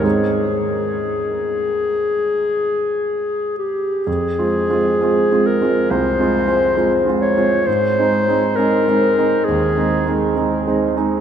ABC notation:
X:1
M:4/4
L:1/8
Q:1/4=66
K:Ab
V:1 name="Clarinet"
A6- A G | [K:Fm] A3 B c3 d | c2 B2 A2 z2 |]
V:2 name="Grand piano"
[A,,A,CE]8 | [K:Fm] (3F,, [A,CF] [A,CF] (3[A,CF] [A,CF] [A,CF] (3C,, [A,CF] [A,CF] (3[A,CF] [A,CF] [A,CF] | (3A,, [A,CE] [A,CE] (3[A,CE] [A,CE] [A,CE] (3E,, [A,CE] [A,CE] (3[A,CE] [A,CE] [A,CE] |]